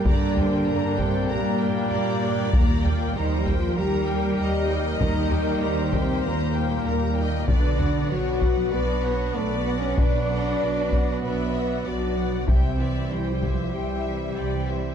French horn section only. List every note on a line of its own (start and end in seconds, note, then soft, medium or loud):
0.06 0.96 D4 loud
0.98 1.29 C4 medium
1.30 2.52 A#3 loud
2.53 3.13 A#3 medium
3.17 3.36 D#4 loud
3.38 3.57 G4 loud
3.58 3.77 F4 medium
3.77 4.85 G4 loud
5.02 5.92 D#4 loud
5.94 6.24 C4 medium
6.26 7.48 A#3 medium
7.49 8.09 D4 medium
8.11 8.72 F#4 loud
8.73 9.35 B4 loud
9.36 9.56 A4 medium
9.58 9.78 B4 medium
9.79 9.98 C#5 medium
9.97 11.06 D5 loud
11.23 11.84 B4 medium
11.86 12.46 F#4 medium
12.47 13.09 C4 medium
13.11 13.31 E4 medium
13.32 13.52 G4 medium
13.54 13.74 F4 medium
13.72 14.95 G4 medium